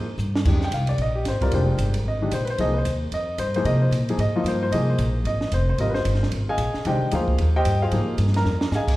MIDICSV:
0, 0, Header, 1, 5, 480
1, 0, Start_track
1, 0, Tempo, 266667
1, 819, Time_signature, 4, 2, 24, 8
1, 16137, End_track
2, 0, Start_track
2, 0, Title_t, "Grand piano"
2, 0, Program_c, 0, 0
2, 836, Note_on_c, 0, 51, 58
2, 838, Note_on_c, 0, 56, 52
2, 840, Note_on_c, 0, 62, 53
2, 844, Note_on_c, 0, 67, 62
2, 1085, Note_off_c, 0, 51, 0
2, 1085, Note_off_c, 0, 56, 0
2, 1086, Note_off_c, 0, 62, 0
2, 1089, Note_off_c, 0, 67, 0
2, 1156, Note_on_c, 0, 79, 79
2, 1320, Note_off_c, 0, 79, 0
2, 1336, Note_on_c, 0, 77, 70
2, 1595, Note_off_c, 0, 77, 0
2, 1601, Note_on_c, 0, 74, 80
2, 1781, Note_off_c, 0, 74, 0
2, 1831, Note_on_c, 0, 75, 79
2, 2076, Note_on_c, 0, 67, 64
2, 2083, Note_off_c, 0, 75, 0
2, 2259, Note_off_c, 0, 67, 0
2, 2309, Note_on_c, 0, 72, 75
2, 2553, Note_on_c, 0, 55, 66
2, 2553, Note_on_c, 0, 60, 57
2, 2557, Note_on_c, 0, 70, 71
2, 2561, Note_on_c, 0, 65, 57
2, 2562, Note_off_c, 0, 72, 0
2, 2585, Note_on_c, 0, 74, 76
2, 2764, Note_on_c, 0, 62, 58
2, 2767, Note_on_c, 0, 67, 62
2, 2768, Note_on_c, 0, 56, 60
2, 2773, Note_on_c, 0, 72, 69
2, 3012, Note_off_c, 0, 74, 0
2, 3184, Note_off_c, 0, 55, 0
2, 3184, Note_off_c, 0, 60, 0
2, 3186, Note_off_c, 0, 70, 0
2, 3188, Note_off_c, 0, 65, 0
2, 3460, Note_off_c, 0, 62, 0
2, 3462, Note_off_c, 0, 56, 0
2, 3462, Note_off_c, 0, 67, 0
2, 3464, Note_off_c, 0, 72, 0
2, 3745, Note_on_c, 0, 75, 73
2, 3991, Note_on_c, 0, 51, 59
2, 4000, Note_on_c, 0, 62, 57
2, 4004, Note_on_c, 0, 56, 52
2, 4004, Note_on_c, 0, 67, 62
2, 4163, Note_off_c, 0, 51, 0
2, 4167, Note_off_c, 0, 62, 0
2, 4169, Note_off_c, 0, 56, 0
2, 4169, Note_off_c, 0, 67, 0
2, 4170, Note_off_c, 0, 75, 0
2, 4205, Note_on_c, 0, 72, 75
2, 4409, Note_on_c, 0, 71, 57
2, 4439, Note_off_c, 0, 71, 0
2, 4469, Note_off_c, 0, 72, 0
2, 4505, Note_on_c, 0, 72, 79
2, 4666, Note_on_c, 0, 53, 65
2, 4674, Note_off_c, 0, 72, 0
2, 4675, Note_on_c, 0, 58, 52
2, 4679, Note_on_c, 0, 63, 56
2, 4685, Note_on_c, 0, 68, 67
2, 4690, Note_on_c, 0, 75, 87
2, 4912, Note_on_c, 0, 71, 49
2, 4920, Note_off_c, 0, 53, 0
2, 4924, Note_off_c, 0, 58, 0
2, 4926, Note_off_c, 0, 63, 0
2, 4929, Note_off_c, 0, 68, 0
2, 4937, Note_off_c, 0, 71, 0
2, 4952, Note_off_c, 0, 75, 0
2, 5002, Note_on_c, 0, 72, 71
2, 5422, Note_off_c, 0, 72, 0
2, 5649, Note_on_c, 0, 75, 86
2, 6082, Note_off_c, 0, 75, 0
2, 6108, Note_on_c, 0, 72, 81
2, 6379, Note_off_c, 0, 72, 0
2, 6406, Note_on_c, 0, 72, 82
2, 6410, Note_on_c, 0, 53, 63
2, 6414, Note_on_c, 0, 58, 63
2, 6416, Note_on_c, 0, 63, 60
2, 6427, Note_on_c, 0, 68, 69
2, 6576, Note_on_c, 0, 75, 89
2, 6584, Note_off_c, 0, 72, 0
2, 6855, Note_off_c, 0, 75, 0
2, 6872, Note_on_c, 0, 72, 66
2, 7033, Note_off_c, 0, 53, 0
2, 7035, Note_off_c, 0, 58, 0
2, 7036, Note_off_c, 0, 63, 0
2, 7041, Note_off_c, 0, 68, 0
2, 7315, Note_off_c, 0, 72, 0
2, 7369, Note_on_c, 0, 58, 53
2, 7371, Note_on_c, 0, 53, 61
2, 7373, Note_on_c, 0, 63, 56
2, 7381, Note_on_c, 0, 68, 69
2, 7532, Note_off_c, 0, 58, 0
2, 7533, Note_off_c, 0, 53, 0
2, 7534, Note_off_c, 0, 63, 0
2, 7538, Note_off_c, 0, 68, 0
2, 7562, Note_on_c, 0, 75, 84
2, 7839, Note_on_c, 0, 53, 72
2, 7844, Note_on_c, 0, 58, 60
2, 7849, Note_on_c, 0, 65, 69
2, 7856, Note_on_c, 0, 63, 62
2, 7998, Note_off_c, 0, 75, 0
2, 8061, Note_on_c, 0, 72, 77
2, 8300, Note_off_c, 0, 72, 0
2, 8327, Note_on_c, 0, 72, 81
2, 8467, Note_off_c, 0, 53, 0
2, 8470, Note_off_c, 0, 58, 0
2, 8472, Note_off_c, 0, 65, 0
2, 8476, Note_off_c, 0, 63, 0
2, 8496, Note_on_c, 0, 75, 87
2, 8505, Note_off_c, 0, 72, 0
2, 8520, Note_on_c, 0, 58, 52
2, 8523, Note_on_c, 0, 53, 59
2, 8524, Note_on_c, 0, 63, 54
2, 8535, Note_on_c, 0, 68, 65
2, 8775, Note_off_c, 0, 75, 0
2, 8811, Note_on_c, 0, 72, 68
2, 9245, Note_off_c, 0, 72, 0
2, 9480, Note_on_c, 0, 75, 85
2, 9833, Note_off_c, 0, 58, 0
2, 9835, Note_off_c, 0, 53, 0
2, 9835, Note_off_c, 0, 63, 0
2, 9841, Note_off_c, 0, 68, 0
2, 9917, Note_off_c, 0, 75, 0
2, 9970, Note_on_c, 0, 72, 78
2, 10223, Note_off_c, 0, 72, 0
2, 10250, Note_on_c, 0, 72, 74
2, 10426, Note_off_c, 0, 72, 0
2, 10435, Note_on_c, 0, 55, 55
2, 10437, Note_on_c, 0, 60, 50
2, 10442, Note_on_c, 0, 65, 48
2, 10443, Note_on_c, 0, 70, 54
2, 10450, Note_on_c, 0, 75, 87
2, 10611, Note_on_c, 0, 71, 59
2, 10648, Note_off_c, 0, 71, 0
2, 10698, Note_on_c, 0, 72, 87
2, 10713, Note_off_c, 0, 75, 0
2, 11148, Note_off_c, 0, 72, 0
2, 11688, Note_on_c, 0, 80, 87
2, 11689, Note_on_c, 0, 68, 70
2, 11700, Note_on_c, 0, 75, 67
2, 11700, Note_on_c, 0, 77, 73
2, 11751, Note_off_c, 0, 55, 0
2, 11752, Note_off_c, 0, 60, 0
2, 11755, Note_off_c, 0, 65, 0
2, 11755, Note_off_c, 0, 70, 0
2, 12305, Note_off_c, 0, 68, 0
2, 12305, Note_off_c, 0, 80, 0
2, 12311, Note_off_c, 0, 75, 0
2, 12311, Note_off_c, 0, 77, 0
2, 12351, Note_on_c, 0, 51, 63
2, 12355, Note_on_c, 0, 56, 54
2, 12355, Note_on_c, 0, 62, 54
2, 12362, Note_on_c, 0, 67, 67
2, 12364, Note_on_c, 0, 79, 79
2, 12375, Note_on_c, 0, 72, 62
2, 12379, Note_on_c, 0, 75, 66
2, 12799, Note_off_c, 0, 79, 0
2, 12805, Note_off_c, 0, 72, 0
2, 12806, Note_off_c, 0, 51, 0
2, 12807, Note_off_c, 0, 75, 0
2, 12808, Note_off_c, 0, 56, 0
2, 12808, Note_off_c, 0, 62, 0
2, 12812, Note_off_c, 0, 67, 0
2, 12816, Note_on_c, 0, 53, 60
2, 12819, Note_on_c, 0, 63, 49
2, 12820, Note_on_c, 0, 58, 53
2, 12824, Note_on_c, 0, 68, 62
2, 12865, Note_on_c, 0, 77, 75
2, 12868, Note_on_c, 0, 72, 57
2, 12874, Note_on_c, 0, 65, 61
2, 13527, Note_off_c, 0, 53, 0
2, 13528, Note_off_c, 0, 63, 0
2, 13529, Note_off_c, 0, 58, 0
2, 13530, Note_off_c, 0, 68, 0
2, 13556, Note_off_c, 0, 77, 0
2, 13558, Note_off_c, 0, 72, 0
2, 13561, Note_off_c, 0, 65, 0
2, 13613, Note_on_c, 0, 79, 98
2, 13614, Note_on_c, 0, 67, 78
2, 13614, Note_on_c, 0, 72, 73
2, 13618, Note_on_c, 0, 75, 82
2, 14047, Note_off_c, 0, 67, 0
2, 14047, Note_off_c, 0, 79, 0
2, 14048, Note_off_c, 0, 72, 0
2, 14049, Note_off_c, 0, 75, 0
2, 14081, Note_on_c, 0, 77, 84
2, 14085, Note_on_c, 0, 72, 65
2, 14094, Note_on_c, 0, 68, 64
2, 14101, Note_on_c, 0, 65, 60
2, 14248, Note_off_c, 0, 68, 0
2, 14263, Note_on_c, 0, 53, 62
2, 14267, Note_on_c, 0, 63, 56
2, 14271, Note_on_c, 0, 58, 55
2, 14275, Note_on_c, 0, 68, 62
2, 14701, Note_off_c, 0, 77, 0
2, 14703, Note_off_c, 0, 72, 0
2, 14711, Note_off_c, 0, 65, 0
2, 15055, Note_on_c, 0, 82, 92
2, 15064, Note_on_c, 0, 70, 75
2, 15585, Note_off_c, 0, 53, 0
2, 15587, Note_off_c, 0, 63, 0
2, 15589, Note_off_c, 0, 58, 0
2, 15591, Note_off_c, 0, 68, 0
2, 15668, Note_off_c, 0, 82, 0
2, 15673, Note_off_c, 0, 70, 0
2, 15751, Note_on_c, 0, 75, 65
2, 15753, Note_on_c, 0, 80, 77
2, 15754, Note_on_c, 0, 68, 63
2, 15762, Note_on_c, 0, 77, 67
2, 16137, Note_off_c, 0, 68, 0
2, 16137, Note_off_c, 0, 75, 0
2, 16137, Note_off_c, 0, 77, 0
2, 16137, Note_off_c, 0, 80, 0
2, 16137, End_track
3, 0, Start_track
3, 0, Title_t, "Upright bass"
3, 0, Program_c, 1, 32
3, 0, Note_on_c, 1, 44, 74
3, 307, Note_off_c, 1, 44, 0
3, 318, Note_on_c, 1, 43, 90
3, 794, Note_off_c, 1, 43, 0
3, 817, Note_on_c, 1, 41, 84
3, 1270, Note_off_c, 1, 41, 0
3, 1280, Note_on_c, 1, 36, 79
3, 1749, Note_off_c, 1, 36, 0
3, 1760, Note_on_c, 1, 34, 78
3, 2235, Note_off_c, 1, 34, 0
3, 2246, Note_on_c, 1, 32, 77
3, 2710, Note_off_c, 1, 32, 0
3, 2721, Note_on_c, 1, 29, 85
3, 3186, Note_off_c, 1, 29, 0
3, 3197, Note_on_c, 1, 31, 86
3, 3673, Note_off_c, 1, 31, 0
3, 3684, Note_on_c, 1, 32, 74
3, 4157, Note_off_c, 1, 32, 0
3, 4168, Note_on_c, 1, 34, 85
3, 4639, Note_off_c, 1, 34, 0
3, 4652, Note_on_c, 1, 36, 84
3, 5121, Note_off_c, 1, 36, 0
3, 5129, Note_on_c, 1, 39, 92
3, 5599, Note_off_c, 1, 39, 0
3, 5609, Note_on_c, 1, 41, 74
3, 6079, Note_off_c, 1, 41, 0
3, 6088, Note_on_c, 1, 43, 85
3, 6549, Note_off_c, 1, 43, 0
3, 6560, Note_on_c, 1, 48, 81
3, 7027, Note_off_c, 1, 48, 0
3, 7038, Note_on_c, 1, 46, 85
3, 7509, Note_off_c, 1, 46, 0
3, 7520, Note_on_c, 1, 44, 79
3, 7979, Note_off_c, 1, 44, 0
3, 7990, Note_on_c, 1, 43, 86
3, 8470, Note_off_c, 1, 43, 0
3, 8490, Note_on_c, 1, 36, 83
3, 8960, Note_off_c, 1, 36, 0
3, 8972, Note_on_c, 1, 34, 90
3, 9427, Note_off_c, 1, 34, 0
3, 9438, Note_on_c, 1, 32, 76
3, 9914, Note_off_c, 1, 32, 0
3, 9929, Note_on_c, 1, 29, 85
3, 10400, Note_off_c, 1, 29, 0
3, 10407, Note_on_c, 1, 32, 83
3, 10879, Note_off_c, 1, 32, 0
3, 10892, Note_on_c, 1, 31, 87
3, 11361, Note_off_c, 1, 31, 0
3, 11371, Note_on_c, 1, 32, 77
3, 11828, Note_off_c, 1, 32, 0
3, 11839, Note_on_c, 1, 34, 87
3, 12114, Note_off_c, 1, 34, 0
3, 12338, Note_on_c, 1, 36, 83
3, 12604, Note_off_c, 1, 36, 0
3, 12809, Note_on_c, 1, 38, 94
3, 13280, Note_off_c, 1, 38, 0
3, 13295, Note_on_c, 1, 39, 79
3, 13763, Note_off_c, 1, 39, 0
3, 13771, Note_on_c, 1, 43, 88
3, 14241, Note_off_c, 1, 43, 0
3, 14248, Note_on_c, 1, 44, 88
3, 14710, Note_off_c, 1, 44, 0
3, 14721, Note_on_c, 1, 43, 89
3, 15196, Note_off_c, 1, 43, 0
3, 15204, Note_on_c, 1, 41, 76
3, 15670, Note_off_c, 1, 41, 0
3, 15681, Note_on_c, 1, 44, 83
3, 16137, Note_off_c, 1, 44, 0
3, 16137, End_track
4, 0, Start_track
4, 0, Title_t, "Muted upright bass strokes"
4, 12135, Note_on_c, 9, 29, 42
4, 12315, Note_off_c, 9, 29, 0
4, 12625, Note_on_c, 9, 29, 38
4, 12805, Note_off_c, 9, 29, 0
4, 16137, End_track
5, 0, Start_track
5, 0, Title_t, "Drums"
5, 335, Note_on_c, 9, 44, 59
5, 515, Note_off_c, 9, 44, 0
5, 639, Note_on_c, 9, 38, 69
5, 817, Note_on_c, 9, 49, 67
5, 818, Note_on_c, 9, 36, 62
5, 819, Note_off_c, 9, 38, 0
5, 997, Note_off_c, 9, 49, 0
5, 998, Note_off_c, 9, 36, 0
5, 1100, Note_on_c, 9, 38, 37
5, 1280, Note_off_c, 9, 38, 0
5, 1292, Note_on_c, 9, 44, 55
5, 1292, Note_on_c, 9, 51, 64
5, 1472, Note_off_c, 9, 44, 0
5, 1472, Note_off_c, 9, 51, 0
5, 1568, Note_on_c, 9, 51, 45
5, 1748, Note_off_c, 9, 51, 0
5, 1766, Note_on_c, 9, 51, 51
5, 1946, Note_off_c, 9, 51, 0
5, 2254, Note_on_c, 9, 44, 57
5, 2254, Note_on_c, 9, 51, 70
5, 2259, Note_on_c, 9, 38, 38
5, 2434, Note_off_c, 9, 44, 0
5, 2434, Note_off_c, 9, 51, 0
5, 2439, Note_off_c, 9, 38, 0
5, 2545, Note_on_c, 9, 36, 52
5, 2548, Note_on_c, 9, 51, 44
5, 2725, Note_off_c, 9, 36, 0
5, 2728, Note_off_c, 9, 51, 0
5, 2729, Note_on_c, 9, 51, 61
5, 2909, Note_off_c, 9, 51, 0
5, 3214, Note_on_c, 9, 44, 52
5, 3214, Note_on_c, 9, 51, 66
5, 3394, Note_off_c, 9, 44, 0
5, 3394, Note_off_c, 9, 51, 0
5, 3489, Note_on_c, 9, 51, 63
5, 3669, Note_off_c, 9, 51, 0
5, 4166, Note_on_c, 9, 44, 60
5, 4166, Note_on_c, 9, 51, 71
5, 4346, Note_off_c, 9, 44, 0
5, 4346, Note_off_c, 9, 51, 0
5, 4452, Note_on_c, 9, 51, 46
5, 4632, Note_off_c, 9, 51, 0
5, 4650, Note_on_c, 9, 51, 53
5, 4830, Note_off_c, 9, 51, 0
5, 5133, Note_on_c, 9, 44, 51
5, 5133, Note_on_c, 9, 51, 63
5, 5313, Note_off_c, 9, 44, 0
5, 5313, Note_off_c, 9, 51, 0
5, 5613, Note_on_c, 9, 51, 54
5, 5793, Note_off_c, 9, 51, 0
5, 6088, Note_on_c, 9, 44, 56
5, 6088, Note_on_c, 9, 51, 62
5, 6268, Note_off_c, 9, 44, 0
5, 6268, Note_off_c, 9, 51, 0
5, 6376, Note_on_c, 9, 51, 44
5, 6556, Note_off_c, 9, 51, 0
5, 6574, Note_on_c, 9, 51, 57
5, 6754, Note_off_c, 9, 51, 0
5, 7061, Note_on_c, 9, 44, 54
5, 7061, Note_on_c, 9, 51, 62
5, 7241, Note_off_c, 9, 44, 0
5, 7241, Note_off_c, 9, 51, 0
5, 7355, Note_on_c, 9, 51, 46
5, 7535, Note_off_c, 9, 51, 0
5, 7536, Note_on_c, 9, 51, 53
5, 7716, Note_off_c, 9, 51, 0
5, 8025, Note_on_c, 9, 44, 50
5, 8025, Note_on_c, 9, 51, 68
5, 8205, Note_off_c, 9, 44, 0
5, 8205, Note_off_c, 9, 51, 0
5, 8503, Note_on_c, 9, 51, 63
5, 8683, Note_off_c, 9, 51, 0
5, 8972, Note_on_c, 9, 44, 55
5, 8972, Note_on_c, 9, 51, 62
5, 9152, Note_off_c, 9, 44, 0
5, 9152, Note_off_c, 9, 51, 0
5, 9454, Note_on_c, 9, 51, 54
5, 9634, Note_off_c, 9, 51, 0
5, 9738, Note_on_c, 9, 38, 43
5, 9918, Note_off_c, 9, 38, 0
5, 9929, Note_on_c, 9, 44, 47
5, 9929, Note_on_c, 9, 51, 66
5, 10109, Note_off_c, 9, 44, 0
5, 10109, Note_off_c, 9, 51, 0
5, 10410, Note_on_c, 9, 51, 55
5, 10590, Note_off_c, 9, 51, 0
5, 10702, Note_on_c, 9, 38, 37
5, 10882, Note_off_c, 9, 38, 0
5, 10892, Note_on_c, 9, 44, 49
5, 10892, Note_on_c, 9, 51, 67
5, 11064, Note_on_c, 9, 38, 29
5, 11072, Note_off_c, 9, 44, 0
5, 11072, Note_off_c, 9, 51, 0
5, 11217, Note_off_c, 9, 38, 0
5, 11217, Note_on_c, 9, 38, 45
5, 11369, Note_on_c, 9, 51, 60
5, 11397, Note_off_c, 9, 38, 0
5, 11549, Note_off_c, 9, 51, 0
5, 11843, Note_on_c, 9, 44, 53
5, 11843, Note_on_c, 9, 51, 69
5, 12023, Note_off_c, 9, 44, 0
5, 12023, Note_off_c, 9, 51, 0
5, 12135, Note_on_c, 9, 38, 32
5, 12315, Note_off_c, 9, 38, 0
5, 12329, Note_on_c, 9, 51, 58
5, 12509, Note_off_c, 9, 51, 0
5, 12806, Note_on_c, 9, 44, 54
5, 12806, Note_on_c, 9, 51, 63
5, 12986, Note_off_c, 9, 44, 0
5, 12986, Note_off_c, 9, 51, 0
5, 13100, Note_on_c, 9, 36, 62
5, 13280, Note_off_c, 9, 36, 0
5, 13291, Note_on_c, 9, 51, 59
5, 13471, Note_off_c, 9, 51, 0
5, 13771, Note_on_c, 9, 44, 60
5, 13771, Note_on_c, 9, 51, 75
5, 13951, Note_off_c, 9, 44, 0
5, 13951, Note_off_c, 9, 51, 0
5, 14247, Note_on_c, 9, 51, 59
5, 14427, Note_off_c, 9, 51, 0
5, 14723, Note_on_c, 9, 44, 53
5, 14723, Note_on_c, 9, 51, 66
5, 14890, Note_on_c, 9, 38, 31
5, 14903, Note_off_c, 9, 44, 0
5, 14903, Note_off_c, 9, 51, 0
5, 15013, Note_on_c, 9, 51, 46
5, 15053, Note_off_c, 9, 38, 0
5, 15053, Note_on_c, 9, 38, 44
5, 15193, Note_off_c, 9, 51, 0
5, 15216, Note_off_c, 9, 38, 0
5, 15216, Note_on_c, 9, 38, 42
5, 15396, Note_off_c, 9, 38, 0
5, 15499, Note_on_c, 9, 38, 65
5, 15679, Note_off_c, 9, 38, 0
5, 15694, Note_on_c, 9, 44, 61
5, 15700, Note_on_c, 9, 38, 54
5, 15874, Note_off_c, 9, 44, 0
5, 15880, Note_off_c, 9, 38, 0
5, 15977, Note_on_c, 9, 36, 67
5, 15987, Note_on_c, 9, 49, 73
5, 16137, Note_off_c, 9, 36, 0
5, 16137, Note_off_c, 9, 49, 0
5, 16137, End_track
0, 0, End_of_file